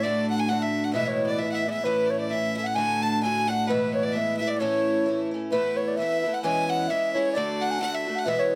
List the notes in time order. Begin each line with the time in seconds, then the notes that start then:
Already playing: A2
0.03 D3 A3 D4 F#4 D5
0.30 F#5
0.39 G#5
0.48 D3 A3 D4 F#5
0.52 F#4
0.61 E5
0.84 F#5
0.93 E2 B2 E3 G#3 B3 E4 E5
1.05 C#5
1.26 D5
1.31 D5
1.38 E3 G#3 B3 E4 E5
1.51 E5 F#5
1.66 E3 G#3 B3 E4 D5 E5
1.70 E5
1.84 A2 E3 A3 C#4 E4 B4
2.06 D5
2.10 C#5
2.19 D5
2.29 E3 A3 C#4 E5
2.33 E4
2.54 C#4 E4 E5
2.59 A3
2.64 F#5
2.75 D3 A3 D4 G#5
2.79 F#4
3.02 A5
3.22 D3 A3 D4 F#4 G#5
3.48 A3 D4 F#4 F#5
3.67 E2 B2 E3 G#3 B3 E4 B4
3.92 C#5
4.03 D5
4.12 E3 G#3 B3 E5
4.17 E4
4.37 E4 E5
4.42 E3 G#3 B3
4.48 D5
4.58 A2 E3 A3 C#4 E4 C#5
5.05 E3 A3 C#4 E4
5.31 A3 C#4 E4
5.51 A2 E3 A3 B3 E4 B4
5.76 C#5
5.88 D5
5.96 E3 E5
6.00 A3 B3 E4
6.21 E4 E5
6.26 A3 B3
6.33 F#5
6.43 E2 B2 E3 G#3 C#4 E4 G#5
6.69 F#5
6.88 E3 G#3 C#4 E4 E5
7.13 G#3 C#4 E4 C#5
7.18 E3
7.32 D3 A3 D5
7.36 D4 F#4 D5
7.61 F#5
7.71 G#5
7.79 D3 A3 D4 F#4 F#5
7.94 E5
8.07 A3 D4 F#4
8.15 F#5
8.25 E2 B2 E3 G#3 B3 E4 E5
8.39 C#5